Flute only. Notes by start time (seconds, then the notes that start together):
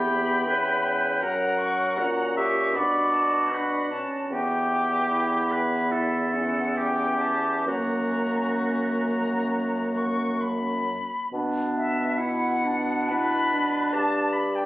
Already playing: B5
1.20 A#5
1.58 C#6
1.97 A#5
2.37 C#6
2.74 B5
3.12 A5
3.52 B5
3.91 A5
4.30 G5
5.90 E5
6.34 F#5
6.77 G5
7.21 A5
7.68 A#5
8.62 A#5
9.97 C#6
10.41 B5
11.76 E5
12.18 F#5
13.09 B5
13.93 A5
14.33 B5
14.55 G5